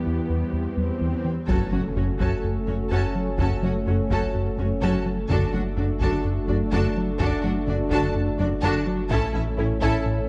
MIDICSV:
0, 0, Header, 1, 13, 480
1, 0, Start_track
1, 0, Tempo, 476190
1, 1501, Time_signature, 4, 2, 24, 8
1, 10370, End_track
2, 0, Start_track
2, 0, Title_t, "Violin section"
2, 0, Program_c, 0, 48
2, 1497, Note_on_c, 0, 69, 56
2, 1497, Note_on_c, 0, 81, 45
2, 1722, Note_off_c, 0, 69, 0
2, 1722, Note_off_c, 0, 81, 0
2, 1741, Note_on_c, 0, 66, 36
2, 1742, Note_on_c, 0, 78, 33
2, 1822, Note_off_c, 0, 66, 0
2, 1823, Note_off_c, 0, 78, 0
2, 1985, Note_on_c, 0, 73, 43
2, 1987, Note_on_c, 0, 61, 36
2, 2066, Note_off_c, 0, 73, 0
2, 2067, Note_off_c, 0, 61, 0
2, 2225, Note_on_c, 0, 69, 47
2, 2226, Note_on_c, 0, 81, 45
2, 2446, Note_off_c, 0, 69, 0
2, 2447, Note_off_c, 0, 81, 0
2, 2701, Note_on_c, 0, 61, 47
2, 2703, Note_on_c, 0, 73, 46
2, 2782, Note_off_c, 0, 61, 0
2, 2784, Note_off_c, 0, 73, 0
2, 2935, Note_on_c, 0, 81, 61
2, 2938, Note_on_c, 0, 69, 55
2, 3161, Note_off_c, 0, 81, 0
2, 3163, Note_off_c, 0, 69, 0
2, 3423, Note_on_c, 0, 69, 50
2, 3424, Note_on_c, 0, 81, 48
2, 3646, Note_off_c, 0, 69, 0
2, 3646, Note_off_c, 0, 81, 0
2, 3671, Note_on_c, 0, 66, 40
2, 3671, Note_on_c, 0, 78, 37
2, 3751, Note_off_c, 0, 78, 0
2, 3752, Note_off_c, 0, 66, 0
2, 3905, Note_on_c, 0, 61, 43
2, 3905, Note_on_c, 0, 73, 36
2, 3986, Note_off_c, 0, 61, 0
2, 3986, Note_off_c, 0, 73, 0
2, 4147, Note_on_c, 0, 69, 57
2, 4147, Note_on_c, 0, 81, 55
2, 4367, Note_off_c, 0, 81, 0
2, 4368, Note_off_c, 0, 69, 0
2, 4620, Note_on_c, 0, 61, 41
2, 4621, Note_on_c, 0, 73, 47
2, 4701, Note_off_c, 0, 61, 0
2, 4702, Note_off_c, 0, 73, 0
2, 4859, Note_on_c, 0, 69, 54
2, 4860, Note_on_c, 0, 81, 63
2, 5083, Note_off_c, 0, 69, 0
2, 5084, Note_off_c, 0, 81, 0
2, 5329, Note_on_c, 0, 81, 58
2, 5332, Note_on_c, 0, 69, 67
2, 5558, Note_off_c, 0, 81, 0
2, 5560, Note_off_c, 0, 69, 0
2, 5573, Note_on_c, 0, 78, 39
2, 5575, Note_on_c, 0, 66, 38
2, 5653, Note_off_c, 0, 78, 0
2, 5655, Note_off_c, 0, 66, 0
2, 5816, Note_on_c, 0, 62, 39
2, 5818, Note_on_c, 0, 74, 45
2, 5897, Note_off_c, 0, 62, 0
2, 5898, Note_off_c, 0, 74, 0
2, 6052, Note_on_c, 0, 81, 58
2, 6057, Note_on_c, 0, 69, 63
2, 6280, Note_off_c, 0, 81, 0
2, 6282, Note_off_c, 0, 69, 0
2, 6535, Note_on_c, 0, 74, 49
2, 6537, Note_on_c, 0, 62, 48
2, 6616, Note_off_c, 0, 74, 0
2, 6618, Note_off_c, 0, 62, 0
2, 6775, Note_on_c, 0, 81, 67
2, 6778, Note_on_c, 0, 69, 62
2, 7001, Note_off_c, 0, 81, 0
2, 7003, Note_off_c, 0, 69, 0
2, 7256, Note_on_c, 0, 69, 74
2, 7258, Note_on_c, 0, 81, 70
2, 7482, Note_off_c, 0, 69, 0
2, 7483, Note_off_c, 0, 81, 0
2, 7489, Note_on_c, 0, 66, 43
2, 7491, Note_on_c, 0, 78, 37
2, 7570, Note_off_c, 0, 66, 0
2, 7571, Note_off_c, 0, 78, 0
2, 7736, Note_on_c, 0, 62, 49
2, 7736, Note_on_c, 0, 74, 55
2, 7816, Note_off_c, 0, 62, 0
2, 7816, Note_off_c, 0, 74, 0
2, 7983, Note_on_c, 0, 69, 63
2, 7983, Note_on_c, 0, 81, 75
2, 8205, Note_off_c, 0, 69, 0
2, 8205, Note_off_c, 0, 81, 0
2, 8458, Note_on_c, 0, 62, 58
2, 8459, Note_on_c, 0, 74, 63
2, 8538, Note_off_c, 0, 62, 0
2, 8540, Note_off_c, 0, 74, 0
2, 8693, Note_on_c, 0, 81, 79
2, 8694, Note_on_c, 0, 69, 69
2, 8920, Note_off_c, 0, 81, 0
2, 8921, Note_off_c, 0, 69, 0
2, 9178, Note_on_c, 0, 69, 69
2, 9178, Note_on_c, 0, 81, 69
2, 9403, Note_off_c, 0, 69, 0
2, 9403, Note_off_c, 0, 81, 0
2, 9413, Note_on_c, 0, 64, 51
2, 9415, Note_on_c, 0, 76, 50
2, 9494, Note_off_c, 0, 64, 0
2, 9495, Note_off_c, 0, 76, 0
2, 9660, Note_on_c, 0, 73, 51
2, 9661, Note_on_c, 0, 61, 53
2, 9741, Note_off_c, 0, 61, 0
2, 9741, Note_off_c, 0, 73, 0
2, 9895, Note_on_c, 0, 81, 69
2, 9897, Note_on_c, 0, 69, 81
2, 10121, Note_off_c, 0, 81, 0
2, 10122, Note_off_c, 0, 69, 0
2, 10370, End_track
3, 0, Start_track
3, 0, Title_t, "Analog synth pad"
3, 0, Program_c, 1, 89
3, 0, Note_on_c, 1, 55, 60
3, 0, Note_on_c, 1, 59, 57
3, 0, Note_on_c, 1, 64, 58
3, 0, Note_on_c, 1, 71, 54
3, 1462, Note_off_c, 1, 64, 0
3, 1500, Note_off_c, 1, 59, 0
3, 1500, Note_off_c, 1, 71, 0
3, 1501, Note_off_c, 1, 55, 0
3, 1503, Note_on_c, 1, 66, 61
3, 1505, Note_on_c, 1, 69, 60
3, 1507, Note_on_c, 1, 57, 51
3, 1508, Note_on_c, 1, 61, 50
3, 5302, Note_off_c, 1, 66, 0
3, 5303, Note_off_c, 1, 69, 0
3, 5304, Note_off_c, 1, 57, 0
3, 5304, Note_off_c, 1, 61, 0
3, 5340, Note_on_c, 1, 62, 60
3, 5340, Note_on_c, 1, 66, 59
3, 5340, Note_on_c, 1, 69, 55
3, 5345, Note_on_c, 1, 57, 58
3, 9141, Note_off_c, 1, 66, 0
3, 9141, Note_off_c, 1, 69, 0
3, 9143, Note_off_c, 1, 57, 0
3, 9179, Note_on_c, 1, 61, 61
3, 9180, Note_on_c, 1, 64, 72
3, 9181, Note_off_c, 1, 62, 0
3, 9181, Note_on_c, 1, 57, 69
3, 9182, Note_on_c, 1, 69, 62
3, 10370, Note_off_c, 1, 57, 0
3, 10370, Note_off_c, 1, 61, 0
3, 10370, Note_off_c, 1, 64, 0
3, 10370, Note_off_c, 1, 69, 0
3, 10370, End_track
4, 0, Start_track
4, 0, Title_t, "Viola section"
4, 0, Program_c, 2, 48
4, 0, Note_on_c, 2, 59, 44
4, 0, Note_on_c, 2, 67, 47
4, 1259, Note_off_c, 2, 67, 0
4, 1299, Note_off_c, 2, 59, 0
4, 1497, Note_on_c, 2, 66, 45
4, 1498, Note_on_c, 2, 61, 47
4, 1722, Note_off_c, 2, 66, 0
4, 1723, Note_off_c, 2, 61, 0
4, 1741, Note_on_c, 2, 66, 36
4, 1742, Note_on_c, 2, 61, 32
4, 1822, Note_off_c, 2, 61, 0
4, 1822, Note_off_c, 2, 66, 0
4, 1981, Note_on_c, 2, 61, 38
4, 1982, Note_on_c, 2, 66, 43
4, 2062, Note_off_c, 2, 61, 0
4, 2062, Note_off_c, 2, 66, 0
4, 2216, Note_on_c, 2, 66, 40
4, 2219, Note_on_c, 2, 61, 44
4, 2441, Note_off_c, 2, 66, 0
4, 2443, Note_off_c, 2, 61, 0
4, 2697, Note_on_c, 2, 66, 36
4, 2699, Note_on_c, 2, 61, 30
4, 2778, Note_off_c, 2, 66, 0
4, 2779, Note_off_c, 2, 61, 0
4, 2939, Note_on_c, 2, 61, 55
4, 2939, Note_on_c, 2, 66, 51
4, 3163, Note_off_c, 2, 61, 0
4, 3163, Note_off_c, 2, 66, 0
4, 3419, Note_on_c, 2, 66, 40
4, 3420, Note_on_c, 2, 61, 42
4, 3643, Note_off_c, 2, 66, 0
4, 3644, Note_off_c, 2, 61, 0
4, 3661, Note_on_c, 2, 61, 35
4, 3663, Note_on_c, 2, 66, 33
4, 3742, Note_off_c, 2, 61, 0
4, 3743, Note_off_c, 2, 66, 0
4, 3900, Note_on_c, 2, 61, 40
4, 3900, Note_on_c, 2, 66, 41
4, 3981, Note_off_c, 2, 61, 0
4, 3981, Note_off_c, 2, 66, 0
4, 4139, Note_on_c, 2, 66, 47
4, 4141, Note_on_c, 2, 61, 49
4, 4363, Note_off_c, 2, 66, 0
4, 4364, Note_off_c, 2, 61, 0
4, 4621, Note_on_c, 2, 61, 36
4, 4623, Note_on_c, 2, 66, 31
4, 4701, Note_off_c, 2, 61, 0
4, 4703, Note_off_c, 2, 66, 0
4, 4858, Note_on_c, 2, 61, 59
4, 4859, Note_on_c, 2, 66, 55
4, 5083, Note_off_c, 2, 61, 0
4, 5084, Note_off_c, 2, 66, 0
4, 5339, Note_on_c, 2, 62, 53
4, 5339, Note_on_c, 2, 66, 55
4, 5563, Note_off_c, 2, 62, 0
4, 5564, Note_off_c, 2, 66, 0
4, 5579, Note_on_c, 2, 66, 39
4, 5580, Note_on_c, 2, 62, 34
4, 5660, Note_off_c, 2, 62, 0
4, 5660, Note_off_c, 2, 66, 0
4, 5819, Note_on_c, 2, 62, 43
4, 5819, Note_on_c, 2, 66, 46
4, 5899, Note_off_c, 2, 66, 0
4, 5900, Note_off_c, 2, 62, 0
4, 6063, Note_on_c, 2, 62, 47
4, 6065, Note_on_c, 2, 66, 46
4, 6285, Note_off_c, 2, 62, 0
4, 6286, Note_off_c, 2, 66, 0
4, 6538, Note_on_c, 2, 62, 37
4, 6538, Note_on_c, 2, 66, 38
4, 6619, Note_off_c, 2, 62, 0
4, 6619, Note_off_c, 2, 66, 0
4, 6776, Note_on_c, 2, 62, 54
4, 6776, Note_on_c, 2, 66, 59
4, 7002, Note_off_c, 2, 62, 0
4, 7002, Note_off_c, 2, 66, 0
4, 7254, Note_on_c, 2, 66, 60
4, 7255, Note_on_c, 2, 62, 67
4, 7481, Note_off_c, 2, 62, 0
4, 7481, Note_off_c, 2, 66, 0
4, 7500, Note_on_c, 2, 66, 40
4, 7501, Note_on_c, 2, 62, 43
4, 7580, Note_off_c, 2, 66, 0
4, 7581, Note_off_c, 2, 62, 0
4, 7735, Note_on_c, 2, 66, 43
4, 7737, Note_on_c, 2, 62, 46
4, 7816, Note_off_c, 2, 66, 0
4, 7817, Note_off_c, 2, 62, 0
4, 7974, Note_on_c, 2, 66, 64
4, 7976, Note_on_c, 2, 62, 55
4, 8201, Note_off_c, 2, 66, 0
4, 8202, Note_off_c, 2, 62, 0
4, 8457, Note_on_c, 2, 62, 45
4, 8459, Note_on_c, 2, 66, 48
4, 8538, Note_off_c, 2, 62, 0
4, 8539, Note_off_c, 2, 66, 0
4, 8700, Note_on_c, 2, 66, 74
4, 8702, Note_on_c, 2, 62, 72
4, 8924, Note_off_c, 2, 66, 0
4, 8925, Note_off_c, 2, 62, 0
4, 9179, Note_on_c, 2, 64, 64
4, 9180, Note_on_c, 2, 61, 63
4, 9403, Note_off_c, 2, 64, 0
4, 9404, Note_off_c, 2, 61, 0
4, 9418, Note_on_c, 2, 61, 47
4, 9418, Note_on_c, 2, 64, 47
4, 9499, Note_off_c, 2, 61, 0
4, 9499, Note_off_c, 2, 64, 0
4, 9659, Note_on_c, 2, 61, 59
4, 9661, Note_on_c, 2, 64, 54
4, 9740, Note_off_c, 2, 61, 0
4, 9742, Note_off_c, 2, 64, 0
4, 9903, Note_on_c, 2, 61, 67
4, 9903, Note_on_c, 2, 64, 67
4, 10125, Note_off_c, 2, 64, 0
4, 10126, Note_off_c, 2, 61, 0
4, 10370, End_track
5, 0, Start_track
5, 0, Title_t, "French horn section"
5, 0, Program_c, 3, 60
5, 1491, Note_on_c, 3, 61, 53
5, 1492, Note_on_c, 3, 57, 53
5, 5296, Note_off_c, 3, 57, 0
5, 5296, Note_off_c, 3, 61, 0
5, 5345, Note_on_c, 3, 57, 59
5, 5347, Note_on_c, 3, 62, 58
5, 9006, Note_off_c, 3, 57, 0
5, 9006, Note_off_c, 3, 62, 0
5, 9177, Note_on_c, 3, 61, 69
5, 9179, Note_on_c, 3, 57, 70
5, 10370, Note_off_c, 3, 57, 0
5, 10370, Note_off_c, 3, 61, 0
5, 10370, End_track
6, 0, Start_track
6, 0, Title_t, "Synth arpeggio sound"
6, 0, Program_c, 4, 84
6, 62, Note_on_c, 4, 64, 49
6, 206, Note_off_c, 4, 64, 0
6, 307, Note_on_c, 4, 52, 61
6, 449, Note_off_c, 4, 52, 0
6, 783, Note_on_c, 4, 55, 48
6, 927, Note_off_c, 4, 55, 0
6, 1024, Note_on_c, 4, 52, 66
6, 1167, Note_off_c, 4, 52, 0
6, 1503, Note_on_c, 4, 54, 69
6, 1646, Note_off_c, 4, 54, 0
6, 1742, Note_on_c, 4, 61, 58
6, 1886, Note_off_c, 4, 61, 0
6, 1981, Note_on_c, 4, 66, 55
6, 2125, Note_off_c, 4, 66, 0
6, 2220, Note_on_c, 4, 54, 72
6, 2365, Note_off_c, 4, 54, 0
6, 2707, Note_on_c, 4, 57, 46
6, 2849, Note_off_c, 4, 57, 0
6, 2946, Note_on_c, 4, 54, 77
6, 3089, Note_off_c, 4, 54, 0
6, 3429, Note_on_c, 4, 54, 72
6, 3570, Note_off_c, 4, 54, 0
6, 3670, Note_on_c, 4, 61, 60
6, 3811, Note_off_c, 4, 61, 0
6, 3909, Note_on_c, 4, 66, 49
6, 4051, Note_off_c, 4, 66, 0
6, 4151, Note_on_c, 4, 54, 73
6, 4292, Note_off_c, 4, 54, 0
6, 4628, Note_on_c, 4, 57, 54
6, 4770, Note_off_c, 4, 57, 0
6, 4871, Note_on_c, 4, 54, 79
6, 5012, Note_off_c, 4, 54, 0
6, 5344, Note_on_c, 4, 50, 71
6, 5487, Note_off_c, 4, 50, 0
6, 5584, Note_on_c, 4, 57, 62
6, 5727, Note_off_c, 4, 57, 0
6, 5829, Note_on_c, 4, 62, 52
6, 5971, Note_off_c, 4, 62, 0
6, 6070, Note_on_c, 4, 50, 77
6, 6211, Note_off_c, 4, 50, 0
6, 6548, Note_on_c, 4, 54, 55
6, 6690, Note_off_c, 4, 54, 0
6, 6783, Note_on_c, 4, 50, 76
6, 6926, Note_off_c, 4, 50, 0
6, 7259, Note_on_c, 4, 50, 71
6, 7404, Note_off_c, 4, 50, 0
6, 7504, Note_on_c, 4, 57, 60
6, 7648, Note_off_c, 4, 57, 0
6, 7742, Note_on_c, 4, 62, 51
6, 7886, Note_off_c, 4, 62, 0
6, 7982, Note_on_c, 4, 50, 80
6, 8126, Note_off_c, 4, 50, 0
6, 8465, Note_on_c, 4, 54, 59
6, 8608, Note_off_c, 4, 54, 0
6, 8698, Note_on_c, 4, 50, 91
6, 8843, Note_off_c, 4, 50, 0
6, 9182, Note_on_c, 4, 57, 80
6, 9326, Note_off_c, 4, 57, 0
6, 9425, Note_on_c, 4, 64, 57
6, 9568, Note_off_c, 4, 64, 0
6, 9661, Note_on_c, 4, 69, 53
6, 9805, Note_off_c, 4, 69, 0
6, 9899, Note_on_c, 4, 57, 84
6, 10044, Note_off_c, 4, 57, 0
6, 10370, End_track
7, 0, Start_track
7, 0, Title_t, "Analog synth bass"
7, 0, Program_c, 5, 38
7, 63, Note_on_c, 5, 40, 45
7, 206, Note_off_c, 5, 40, 0
7, 298, Note_on_c, 5, 40, 67
7, 443, Note_off_c, 5, 40, 0
7, 534, Note_on_c, 5, 40, 47
7, 681, Note_off_c, 5, 40, 0
7, 775, Note_on_c, 5, 40, 46
7, 921, Note_off_c, 5, 40, 0
7, 1017, Note_on_c, 5, 40, 62
7, 1162, Note_off_c, 5, 40, 0
7, 1258, Note_on_c, 5, 52, 52
7, 1403, Note_off_c, 5, 52, 0
7, 1497, Note_on_c, 5, 42, 80
7, 1643, Note_off_c, 5, 42, 0
7, 1738, Note_on_c, 5, 54, 49
7, 1883, Note_off_c, 5, 54, 0
7, 1980, Note_on_c, 5, 42, 52
7, 2124, Note_off_c, 5, 42, 0
7, 2216, Note_on_c, 5, 42, 67
7, 2362, Note_off_c, 5, 42, 0
7, 2459, Note_on_c, 5, 42, 48
7, 2604, Note_off_c, 5, 42, 0
7, 2699, Note_on_c, 5, 42, 51
7, 2844, Note_off_c, 5, 42, 0
7, 2937, Note_on_c, 5, 42, 68
7, 3082, Note_off_c, 5, 42, 0
7, 3180, Note_on_c, 5, 54, 47
7, 3324, Note_off_c, 5, 54, 0
7, 3416, Note_on_c, 5, 42, 78
7, 3561, Note_off_c, 5, 42, 0
7, 3658, Note_on_c, 5, 54, 55
7, 3803, Note_off_c, 5, 54, 0
7, 3899, Note_on_c, 5, 42, 50
7, 4044, Note_off_c, 5, 42, 0
7, 4142, Note_on_c, 5, 42, 68
7, 4286, Note_off_c, 5, 42, 0
7, 4382, Note_on_c, 5, 42, 54
7, 4526, Note_off_c, 5, 42, 0
7, 4620, Note_on_c, 5, 42, 55
7, 4764, Note_off_c, 5, 42, 0
7, 4861, Note_on_c, 5, 42, 68
7, 5005, Note_off_c, 5, 42, 0
7, 5101, Note_on_c, 5, 54, 51
7, 5245, Note_off_c, 5, 54, 0
7, 5342, Note_on_c, 5, 42, 78
7, 5486, Note_off_c, 5, 42, 0
7, 5585, Note_on_c, 5, 54, 50
7, 5728, Note_off_c, 5, 54, 0
7, 5818, Note_on_c, 5, 42, 47
7, 5963, Note_off_c, 5, 42, 0
7, 6057, Note_on_c, 5, 42, 68
7, 6203, Note_off_c, 5, 42, 0
7, 6297, Note_on_c, 5, 42, 53
7, 6443, Note_off_c, 5, 42, 0
7, 6541, Note_on_c, 5, 42, 58
7, 6685, Note_off_c, 5, 42, 0
7, 6781, Note_on_c, 5, 42, 77
7, 6925, Note_off_c, 5, 42, 0
7, 7021, Note_on_c, 5, 54, 56
7, 7165, Note_off_c, 5, 54, 0
7, 7259, Note_on_c, 5, 42, 91
7, 7404, Note_off_c, 5, 42, 0
7, 7499, Note_on_c, 5, 54, 53
7, 7644, Note_off_c, 5, 54, 0
7, 7738, Note_on_c, 5, 42, 59
7, 7883, Note_off_c, 5, 42, 0
7, 7976, Note_on_c, 5, 42, 76
7, 8122, Note_off_c, 5, 42, 0
7, 8218, Note_on_c, 5, 42, 62
7, 8363, Note_off_c, 5, 42, 0
7, 8460, Note_on_c, 5, 42, 61
7, 8604, Note_off_c, 5, 42, 0
7, 8701, Note_on_c, 5, 42, 73
7, 8845, Note_off_c, 5, 42, 0
7, 8939, Note_on_c, 5, 54, 52
7, 9084, Note_off_c, 5, 54, 0
7, 9180, Note_on_c, 5, 45, 88
7, 9325, Note_off_c, 5, 45, 0
7, 9421, Note_on_c, 5, 57, 50
7, 9565, Note_off_c, 5, 57, 0
7, 9662, Note_on_c, 5, 45, 55
7, 9806, Note_off_c, 5, 45, 0
7, 9899, Note_on_c, 5, 45, 79
7, 10044, Note_off_c, 5, 45, 0
7, 10139, Note_on_c, 5, 45, 61
7, 10284, Note_off_c, 5, 45, 0
7, 10370, End_track
8, 0, Start_track
8, 0, Title_t, "Cello section"
8, 0, Program_c, 6, 48
8, 0, Note_on_c, 6, 40, 49
8, 1259, Note_off_c, 6, 40, 0
8, 1500, Note_on_c, 6, 42, 47
8, 1581, Note_off_c, 6, 42, 0
8, 1742, Note_on_c, 6, 42, 41
8, 1823, Note_off_c, 6, 42, 0
8, 1977, Note_on_c, 6, 42, 33
8, 2058, Note_off_c, 6, 42, 0
8, 2218, Note_on_c, 6, 42, 57
8, 2299, Note_off_c, 6, 42, 0
8, 2702, Note_on_c, 6, 42, 31
8, 2782, Note_off_c, 6, 42, 0
8, 2941, Note_on_c, 6, 42, 49
8, 3022, Note_off_c, 6, 42, 0
8, 3425, Note_on_c, 6, 42, 50
8, 3505, Note_off_c, 6, 42, 0
8, 3664, Note_on_c, 6, 42, 37
8, 3745, Note_off_c, 6, 42, 0
8, 3903, Note_on_c, 6, 42, 39
8, 3983, Note_off_c, 6, 42, 0
8, 4141, Note_on_c, 6, 42, 54
8, 4222, Note_off_c, 6, 42, 0
8, 4619, Note_on_c, 6, 42, 36
8, 4700, Note_off_c, 6, 42, 0
8, 4857, Note_on_c, 6, 42, 49
8, 4938, Note_off_c, 6, 42, 0
8, 5338, Note_on_c, 6, 42, 52
8, 5419, Note_off_c, 6, 42, 0
8, 5580, Note_on_c, 6, 42, 40
8, 5661, Note_off_c, 6, 42, 0
8, 5821, Note_on_c, 6, 42, 41
8, 5901, Note_off_c, 6, 42, 0
8, 6060, Note_on_c, 6, 42, 62
8, 6141, Note_off_c, 6, 42, 0
8, 6541, Note_on_c, 6, 42, 41
8, 6622, Note_off_c, 6, 42, 0
8, 6779, Note_on_c, 6, 42, 60
8, 6859, Note_off_c, 6, 42, 0
8, 7256, Note_on_c, 6, 42, 69
8, 7336, Note_off_c, 6, 42, 0
8, 7497, Note_on_c, 6, 42, 50
8, 7578, Note_off_c, 6, 42, 0
8, 7742, Note_on_c, 6, 42, 43
8, 7823, Note_off_c, 6, 42, 0
8, 7983, Note_on_c, 6, 42, 68
8, 8064, Note_off_c, 6, 42, 0
8, 8458, Note_on_c, 6, 42, 43
8, 8539, Note_off_c, 6, 42, 0
8, 8700, Note_on_c, 6, 42, 70
8, 8781, Note_off_c, 6, 42, 0
8, 9183, Note_on_c, 6, 45, 65
8, 9264, Note_off_c, 6, 45, 0
8, 9421, Note_on_c, 6, 45, 50
8, 9502, Note_off_c, 6, 45, 0
8, 9660, Note_on_c, 6, 45, 51
8, 9741, Note_off_c, 6, 45, 0
8, 9895, Note_on_c, 6, 45, 81
8, 9976, Note_off_c, 6, 45, 0
8, 10370, End_track
9, 0, Start_track
9, 0, Title_t, "Double bass section"
9, 0, Program_c, 7, 48
9, 1507, Note_on_c, 7, 30, 53
9, 1588, Note_off_c, 7, 30, 0
9, 1748, Note_on_c, 7, 30, 36
9, 1829, Note_off_c, 7, 30, 0
9, 1986, Note_on_c, 7, 30, 31
9, 2067, Note_off_c, 7, 30, 0
9, 2227, Note_on_c, 7, 30, 50
9, 2308, Note_off_c, 7, 30, 0
9, 2707, Note_on_c, 7, 30, 34
9, 2788, Note_off_c, 7, 30, 0
9, 2950, Note_on_c, 7, 30, 54
9, 3031, Note_off_c, 7, 30, 0
9, 3432, Note_on_c, 7, 30, 57
9, 3513, Note_off_c, 7, 30, 0
9, 3669, Note_on_c, 7, 30, 39
9, 3750, Note_off_c, 7, 30, 0
9, 3908, Note_on_c, 7, 30, 34
9, 3988, Note_off_c, 7, 30, 0
9, 4142, Note_on_c, 7, 30, 54
9, 4222, Note_off_c, 7, 30, 0
9, 4623, Note_on_c, 7, 30, 39
9, 4703, Note_off_c, 7, 30, 0
9, 4863, Note_on_c, 7, 30, 56
9, 4943, Note_off_c, 7, 30, 0
9, 5344, Note_on_c, 7, 30, 62
9, 5425, Note_off_c, 7, 30, 0
9, 5587, Note_on_c, 7, 30, 46
9, 5668, Note_off_c, 7, 30, 0
9, 5823, Note_on_c, 7, 30, 39
9, 5904, Note_off_c, 7, 30, 0
9, 6064, Note_on_c, 7, 30, 53
9, 6145, Note_off_c, 7, 30, 0
9, 6538, Note_on_c, 7, 30, 48
9, 6619, Note_off_c, 7, 30, 0
9, 6779, Note_on_c, 7, 30, 58
9, 6859, Note_off_c, 7, 30, 0
9, 7263, Note_on_c, 7, 30, 65
9, 7343, Note_off_c, 7, 30, 0
9, 7504, Note_on_c, 7, 30, 44
9, 7584, Note_off_c, 7, 30, 0
9, 7742, Note_on_c, 7, 30, 44
9, 7822, Note_off_c, 7, 30, 0
9, 7983, Note_on_c, 7, 30, 58
9, 8064, Note_off_c, 7, 30, 0
9, 8458, Note_on_c, 7, 30, 50
9, 8539, Note_off_c, 7, 30, 0
9, 8700, Note_on_c, 7, 30, 76
9, 8780, Note_off_c, 7, 30, 0
9, 9174, Note_on_c, 7, 33, 69
9, 9255, Note_off_c, 7, 33, 0
9, 9415, Note_on_c, 7, 33, 58
9, 9495, Note_off_c, 7, 33, 0
9, 9656, Note_on_c, 7, 33, 51
9, 9736, Note_off_c, 7, 33, 0
9, 9894, Note_on_c, 7, 33, 65
9, 9975, Note_off_c, 7, 33, 0
9, 10370, End_track
10, 0, Start_track
10, 0, Title_t, "Sub bass"
10, 0, Program_c, 8, 38
10, 1499, Note_on_c, 8, 30, 54
10, 5300, Note_off_c, 8, 30, 0
10, 5343, Note_on_c, 8, 30, 58
10, 9176, Note_on_c, 8, 33, 62
10, 9191, Note_off_c, 8, 30, 0
10, 10370, Note_off_c, 8, 33, 0
10, 10370, End_track
11, 0, Start_track
11, 0, Title_t, "Impact"
11, 0, Program_c, 10, 103
11, 1501, Note_on_c, 10, 60, 57
11, 3421, Note_off_c, 10, 60, 0
11, 10370, End_track
12, 0, Start_track
12, 0, Title_t, "Swell"
12, 0, Program_c, 11, 103
12, 0, Note_on_c, 11, 60, 41
12, 1502, Note_off_c, 11, 60, 0
12, 10370, End_track
13, 0, Start_track
13, 0, Title_t, "Taiko and cinematic ensemble drums"
13, 1499, Note_on_c, 9, 41, 77
13, 1600, Note_off_c, 9, 41, 0
13, 2218, Note_on_c, 9, 41, 66
13, 2319, Note_off_c, 9, 41, 0
13, 3415, Note_on_c, 9, 41, 80
13, 3516, Note_off_c, 9, 41, 0
13, 4142, Note_on_c, 9, 41, 70
13, 4243, Note_off_c, 9, 41, 0
13, 5339, Note_on_c, 9, 41, 75
13, 5440, Note_off_c, 9, 41, 0
13, 6056, Note_on_c, 9, 41, 66
13, 6157, Note_off_c, 9, 41, 0
13, 7256, Note_on_c, 9, 41, 83
13, 7357, Note_off_c, 9, 41, 0
13, 7974, Note_on_c, 9, 41, 70
13, 8075, Note_off_c, 9, 41, 0
13, 9175, Note_on_c, 9, 41, 73
13, 9276, Note_off_c, 9, 41, 0
13, 9894, Note_on_c, 9, 41, 71
13, 9994, Note_off_c, 9, 41, 0
13, 10370, End_track
0, 0, End_of_file